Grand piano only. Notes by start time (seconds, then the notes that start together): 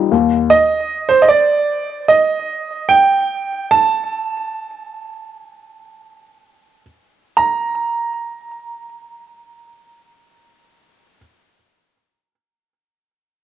0.50 D#5
1.09 C5
1.22 D#5
1.28 D5
2.08 D#5
2.89 G5
3.71 A5
7.37 A#5